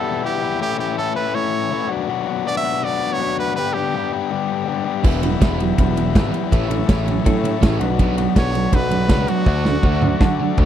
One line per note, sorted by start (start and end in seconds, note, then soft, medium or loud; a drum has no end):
0.00 0.43 E2 medium
0.00 0.44 B2 medium
0.00 0.23 E3 loud
0.00 0.24 G3 loud
0.00 0.25 B3 loud
0.00 0.25 E4 loud
0.00 0.21 A4 medium
0.00 0.60 B4 medium
0.00 0.60 F#5 medium
0.00 0.61 G5 medium
0.00 1.89 E6 medium
0.24 0.44 E3 medium
0.24 0.43 G3 medium
0.24 0.43 B3 medium
0.24 0.41 E4 medium
0.24 0.59 G4 medium
0.43 0.60 E3 medium
0.43 0.61 G3 medium
0.43 0.61 B3 medium
0.43 0.61 E4 medium
0.60 0.98 A2 loud
0.60 0.96 E3 loud
0.60 0.80 A3 loud
0.60 0.79 C#4 loud
0.60 0.78 E4 loud
0.60 0.79 G4 loud
0.60 1.89 C#5 medium
0.60 1.89 E5 medium
0.60 1.90 A5 medium
0.79 0.97 A3 medium
0.79 0.98 C#4 medium
0.79 0.98 E4 medium
0.79 0.97 G4 medium
0.97 1.33 E3 medium
0.97 1.17 A3 medium
0.97 1.16 C#4 medium
0.97 1.14 E4 medium
0.97 1.15 A4 medium
1.16 1.34 A3 medium
1.16 1.35 C#4 medium
1.16 1.35 E4 medium
1.16 1.36 B4 medium
1.34 1.89 A2 medium
1.34 1.70 E3 loud
1.34 1.71 A3 medium
1.34 1.72 C#4 medium
1.34 1.72 E4 loud
1.34 1.91 C#5 loud
1.71 1.90 E3 medium
1.71 1.90 A3 medium
1.71 1.90 C#4 medium
1.71 1.88 E4 medium
1.89 2.07 B2 medium
1.89 2.07 F#3 medium
1.89 2.08 B3 medium
1.89 2.09 D4 medium
1.89 2.09 F#4 medium
1.89 6.48 B4 medium
1.89 5.02 D5 medium
1.89 3.56 F#5 medium
1.89 5.01 D6 medium
2.08 2.46 B2 medium
2.08 2.45 F#3 loud
2.08 2.29 B3 medium
2.08 2.28 D4 medium
2.08 2.26 F#4 loud
2.27 2.47 B3 medium
2.27 2.47 D4 medium
2.27 2.48 F#4 medium
2.46 2.82 F#3 medium
2.46 2.67 B3 medium
2.46 2.66 D4 medium
2.46 2.63 F#4 medium
2.46 2.56 D5 loud
2.57 2.86 E5 loud
2.65 2.83 B3 medium
2.65 2.83 D4 medium
2.65 2.84 F#4 medium
2.82 3.38 B2 medium
2.82 3.19 F#3 loud
2.82 3.21 B3 loud
2.82 3.21 D4 loud
2.82 3.21 F#4 loud
2.82 3.14 D5 loud
3.13 3.39 C#5 loud
3.20 3.56 F#3 medium
3.20 3.40 B3 medium
3.20 3.39 D4 medium
3.20 3.37 F#4 medium
3.38 3.58 B3 medium
3.38 3.57 D4 medium
3.38 3.56 F#4 medium
3.38 3.55 B4 loud
3.56 3.94 G2 medium
3.56 3.94 D3 loud
3.56 3.78 G3 medium
3.56 3.77 B3 loud
3.56 3.75 D4 loud
3.56 3.75 G4 loud
3.56 3.75 B4 loud
3.56 6.50 G5 medium
3.74 3.94 B3 medium
3.74 3.95 D4 medium
3.74 4.12 G4 medium
3.74 3.96 G4 medium
3.78 3.94 G3 medium
3.94 4.14 G3 medium
3.94 4.13 B3 medium
3.94 4.12 D4 medium
3.94 4.12 G4 medium
4.13 4.30 G3 medium
4.13 4.30 B3 medium
4.13 4.30 D4 medium
4.13 4.31 G4 medium
4.30 4.86 G2 medium
4.30 4.86 D3 medium
4.30 4.65 G3 loud
4.30 4.66 B3 medium
4.30 4.67 D4 medium
4.30 4.68 G4 loud
4.67 4.86 G3 medium
4.67 4.85 B3 medium
4.67 4.85 D4 medium
4.67 4.84 G4 medium
4.85 5.04 G3 medium
4.85 5.04 B3 medium
4.85 5.03 D4 medium
4.85 5.03 G4 medium
5.04 5.35 E1 loud
5.04 5.41 E2 loud
5.04 5.42 B2 medium
5.04 5.25 E3 loud
5.04 5.23 G3 loud
5.04 5.22 B3 loud
5.04 5.23 E4 loud
5.04 6.52 F#5 medium
5.04 7.79 E6 medium
5.04 kick loud
5.04 crash loud
5.22 5.39 E3 medium
5.22 5.40 G3 medium
5.22 5.40 B3 medium
5.22 5.42 E4 medium
5.22 muted distorted electric guitar stroke medium
5.22 ride medium
5.40 5.72 E1 loud
5.40 5.59 E3 medium
5.40 5.58 G3 medium
5.40 5.58 B3 medium
5.40 5.57 E4 medium
5.40 kick loud
5.40 snare loud
5.40 ride loud
5.58 5.77 E3 medium
5.58 5.77 G3 medium
5.58 5.78 B3 medium
5.58 5.78 E4 medium
5.58 muted distorted electric guitar stroke medium
5.58 ride medium
5.77 6.16 E1 loud
5.77 6.33 E2 medium
5.77 6.33 B2 loud
5.77 6.13 E3 medium
5.77 6.15 G3 medium
5.77 6.15 B3 medium
5.77 6.16 E4 loud
5.77 muted distorted electric guitar stroke soft
5.77 kick loud
5.77 ride loud
5.96 muted distorted electric guitar stroke soft
5.96 ride medium
6.15 6.31 G#1 loud
6.15 6.33 E3 medium
6.15 6.32 G3 medium
6.15 6.31 B3 medium
6.15 6.30 E4 medium
6.15 kick loud
6.15 snare loud
6.15 ride loud
6.32 6.49 E3 medium
6.32 6.51 G3 medium
6.32 6.50 B3 medium
6.32 6.50 E4 medium
6.32 muted distorted electric guitar stroke soft
6.32 ride medium
6.50 6.82 A1 loud
6.50 6.88 A2 medium
6.50 6.86 E3 loud
6.50 6.69 A3 loud
6.50 6.69 C#4 loud
6.50 6.67 E4 loud
6.50 7.80 C#5 medium
6.50 7.80 E5 medium
6.50 7.80 A5 medium
6.50 kick loud
6.50 ride loud
6.68 6.87 A3 medium
6.68 6.87 C#4 medium
6.68 6.88 E4 medium
6.68 muted distorted electric guitar stroke soft
6.68 ride medium
6.87 7.19 A1 medium
6.87 7.23 E3 medium
6.87 7.06 A3 medium
6.87 7.05 C#4 medium
6.87 7.04 E4 medium
6.87 kick loud
6.87 snare loud
6.87 ride loud
7.05 7.23 A3 medium
7.05 7.24 C#4 medium
7.05 7.25 E4 medium
7.05 muted distorted electric guitar stroke soft
7.05 ride medium
7.23 7.78 A2 loud
7.23 7.56 A2 loud
7.23 7.60 E3 medium
7.23 7.61 A3 medium
7.23 7.62 C#4 loud
7.23 7.63 E4 loud
7.23 muted distorted electric guitar stroke medium
7.23 kick loud
7.23 ride loud
7.43 muted distorted electric guitar stroke soft
7.43 ride medium
7.61 7.78 A1 loud
7.61 7.79 E3 medium
7.61 7.80 A3 medium
7.61 7.80 C#4 medium
7.61 7.79 E4 medium
7.61 kick loud
7.61 snare loud
7.61 ride loud
7.80 8.26 B1 loud
7.80 7.97 B2 medium
7.80 7.99 F#3 medium
7.80 7.99 B3 medium
7.80 8.00 D4 medium
7.80 10.65 D4 medium
7.80 8.00 F#4 medium
7.80 9.45 B4 medium
7.80 10.65 F#5 medium
7.80 muted distorted electric guitar stroke medium
7.80 ride medium
7.98 8.36 B2 medium
7.98 8.34 F#3 medium
7.98 8.18 B3 loud
7.98 8.18 D4 loud
7.98 8.16 F#4 medium
7.98 kick loud
7.98 ride loud
8.17 8.35 B3 medium
8.17 8.37 D4 medium
8.17 8.37 F#4 medium
8.17 muted distorted electric guitar stroke medium
8.17 ride medium
8.35 8.66 B1 loud
8.35 8.73 F#3 medium
8.35 8.55 B3 medium
8.35 8.54 D4 medium
8.35 8.52 F#4 medium
8.35 8.76 C#5 loud
8.35 kick loud
8.35 snare loud
8.35 ride loud
8.53 8.73 B3 medium
8.53 8.73 D4 medium
8.53 8.74 F#4 medium
8.53 muted distorted electric guitar stroke medium
8.53 ride medium
8.72 9.10 B1 loud
8.72 9.28 B2 medium
8.72 9.08 F#3 loud
8.72 9.09 B3 loud
8.72 9.10 D4 loud
8.72 9.11 F#4 loud
8.72 9.30 B4 loud
8.72 muted distorted electric guitar stroke medium
8.72 kick loud
8.72 ride loud
8.91 muted distorted electric guitar stroke medium
8.91 ride medium
9.09 9.25 C#2 loud
9.09 9.46 F#3 medium
9.09 9.30 B3 medium
9.09 9.29 D4 medium
9.09 9.29 F#4 medium
9.09 kick loud
9.09 snare loud
9.09 ride loud
9.28 9.47 B3 medium
9.28 9.47 D4 medium
9.28 10.39 F#4 medium
9.28 9.48 F#4 medium
9.28 muted distorted electric guitar stroke medium
9.28 ride medium
9.45 9.77 D2 loud
9.45 9.83 D3 loud
9.45 9.67 A3 loud
9.45 9.65 D4 loud
9.45 9.64 F#4 loud
9.45 10.65 A4 medium
9.45 10.65 D6 medium
9.45 kick loud
9.65 9.83 A3 medium
9.65 9.84 D4 medium
9.65 9.85 F#4 medium
9.65 muted distorted electric guitar stroke soft
9.65 snare medium
9.83 10.14 D2 medium
9.83 10.19 D3 medium
9.83 10.04 A3 medium
9.83 10.03 D4 medium
9.83 10.02 F#4 medium
9.83 kick loud
10.01 10.21 D4 medium
10.01 10.22 F#4 medium
10.01 muted distorted electric guitar stroke medium
10.01 mid tom medium
10.06 10.20 A3 medium
10.20 10.57 D3 loud
10.20 10.51 D3 loud
10.20 10.58 A3 medium
10.20 10.59 D4 loud
10.20 10.59 F#4 loud
10.20 muted distorted electric guitar stroke soft
10.20 kick loud
10.20 snare medium
10.39 muted distorted electric guitar stroke medium
10.58 10.65 D2 medium
10.58 10.65 D3 medium
10.58 10.65 A3 medium
10.58 10.65 D4 medium
10.58 10.65 F#4 medium
10.58 kick loud
10.58 floor tom loud